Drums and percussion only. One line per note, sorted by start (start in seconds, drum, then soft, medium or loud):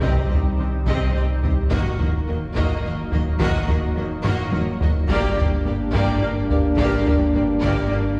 0.02 taiko loud
0.31 taiko low medium
0.87 taiko medium
1.43 taiko low medium
1.71 taiko loud
1.99 taiko low medium
2.56 taiko medium
3.12 taiko low medium
3.40 taiko loud
3.68 taiko low medium
4.24 taiko low-mid medium
4.52 taiko high loud
4.81 taiko low loud
5.09 taiko loud
5.38 taiko low medium
5.94 taiko medium
6.50 taiko low medium
6.78 taiko loud
7.06 taiko low medium
7.63 taiko medium